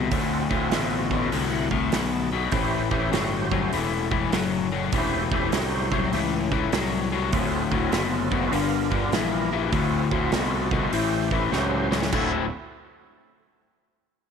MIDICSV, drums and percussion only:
0, 0, Header, 1, 2, 480
1, 0, Start_track
1, 0, Tempo, 600000
1, 101, Time_signature, 4, 2, 24, 8
1, 11442, End_track
2, 0, Start_track
2, 0, Title_t, "Drums"
2, 91, Note_on_c, 9, 46, 58
2, 93, Note_on_c, 9, 36, 108
2, 171, Note_off_c, 9, 46, 0
2, 173, Note_off_c, 9, 36, 0
2, 406, Note_on_c, 9, 36, 88
2, 486, Note_off_c, 9, 36, 0
2, 572, Note_on_c, 9, 46, 56
2, 578, Note_on_c, 9, 38, 108
2, 652, Note_off_c, 9, 46, 0
2, 658, Note_off_c, 9, 38, 0
2, 886, Note_on_c, 9, 36, 82
2, 966, Note_off_c, 9, 36, 0
2, 1058, Note_on_c, 9, 46, 58
2, 1138, Note_off_c, 9, 46, 0
2, 1368, Note_on_c, 9, 36, 77
2, 1448, Note_off_c, 9, 36, 0
2, 1536, Note_on_c, 9, 46, 59
2, 1541, Note_on_c, 9, 38, 109
2, 1616, Note_off_c, 9, 46, 0
2, 1621, Note_off_c, 9, 38, 0
2, 2013, Note_on_c, 9, 46, 55
2, 2019, Note_on_c, 9, 36, 112
2, 2093, Note_off_c, 9, 46, 0
2, 2099, Note_off_c, 9, 36, 0
2, 2330, Note_on_c, 9, 36, 89
2, 2410, Note_off_c, 9, 36, 0
2, 2504, Note_on_c, 9, 46, 50
2, 2509, Note_on_c, 9, 38, 107
2, 2584, Note_off_c, 9, 46, 0
2, 2589, Note_off_c, 9, 38, 0
2, 2812, Note_on_c, 9, 36, 87
2, 2892, Note_off_c, 9, 36, 0
2, 2981, Note_on_c, 9, 46, 57
2, 3061, Note_off_c, 9, 46, 0
2, 3292, Note_on_c, 9, 36, 81
2, 3372, Note_off_c, 9, 36, 0
2, 3459, Note_on_c, 9, 46, 56
2, 3465, Note_on_c, 9, 38, 107
2, 3539, Note_off_c, 9, 46, 0
2, 3545, Note_off_c, 9, 38, 0
2, 3939, Note_on_c, 9, 46, 58
2, 3941, Note_on_c, 9, 36, 105
2, 4019, Note_off_c, 9, 46, 0
2, 4021, Note_off_c, 9, 36, 0
2, 4253, Note_on_c, 9, 36, 89
2, 4333, Note_off_c, 9, 36, 0
2, 4418, Note_on_c, 9, 46, 56
2, 4424, Note_on_c, 9, 38, 96
2, 4498, Note_off_c, 9, 46, 0
2, 4504, Note_off_c, 9, 38, 0
2, 4733, Note_on_c, 9, 36, 86
2, 4813, Note_off_c, 9, 36, 0
2, 4902, Note_on_c, 9, 46, 59
2, 4982, Note_off_c, 9, 46, 0
2, 5214, Note_on_c, 9, 36, 86
2, 5294, Note_off_c, 9, 36, 0
2, 5380, Note_on_c, 9, 46, 60
2, 5385, Note_on_c, 9, 38, 110
2, 5460, Note_off_c, 9, 46, 0
2, 5465, Note_off_c, 9, 38, 0
2, 5860, Note_on_c, 9, 46, 56
2, 5864, Note_on_c, 9, 36, 107
2, 5940, Note_off_c, 9, 46, 0
2, 5944, Note_off_c, 9, 36, 0
2, 6173, Note_on_c, 9, 36, 81
2, 6253, Note_off_c, 9, 36, 0
2, 6338, Note_on_c, 9, 46, 53
2, 6344, Note_on_c, 9, 38, 106
2, 6418, Note_off_c, 9, 46, 0
2, 6424, Note_off_c, 9, 38, 0
2, 6653, Note_on_c, 9, 36, 88
2, 6733, Note_off_c, 9, 36, 0
2, 6821, Note_on_c, 9, 46, 53
2, 6901, Note_off_c, 9, 46, 0
2, 7133, Note_on_c, 9, 36, 79
2, 7213, Note_off_c, 9, 36, 0
2, 7300, Note_on_c, 9, 46, 48
2, 7305, Note_on_c, 9, 38, 108
2, 7380, Note_off_c, 9, 46, 0
2, 7385, Note_off_c, 9, 38, 0
2, 7779, Note_on_c, 9, 46, 52
2, 7781, Note_on_c, 9, 36, 103
2, 7859, Note_off_c, 9, 46, 0
2, 7861, Note_off_c, 9, 36, 0
2, 8091, Note_on_c, 9, 36, 88
2, 8171, Note_off_c, 9, 36, 0
2, 8255, Note_on_c, 9, 46, 55
2, 8260, Note_on_c, 9, 38, 106
2, 8335, Note_off_c, 9, 46, 0
2, 8340, Note_off_c, 9, 38, 0
2, 8570, Note_on_c, 9, 36, 88
2, 8650, Note_off_c, 9, 36, 0
2, 8741, Note_on_c, 9, 46, 62
2, 8821, Note_off_c, 9, 46, 0
2, 9049, Note_on_c, 9, 36, 80
2, 9129, Note_off_c, 9, 36, 0
2, 9221, Note_on_c, 9, 38, 60
2, 9301, Note_off_c, 9, 38, 0
2, 9537, Note_on_c, 9, 38, 86
2, 9617, Note_off_c, 9, 38, 0
2, 9618, Note_on_c, 9, 38, 77
2, 9698, Note_off_c, 9, 38, 0
2, 9700, Note_on_c, 9, 49, 88
2, 9702, Note_on_c, 9, 36, 105
2, 9780, Note_off_c, 9, 49, 0
2, 9782, Note_off_c, 9, 36, 0
2, 11442, End_track
0, 0, End_of_file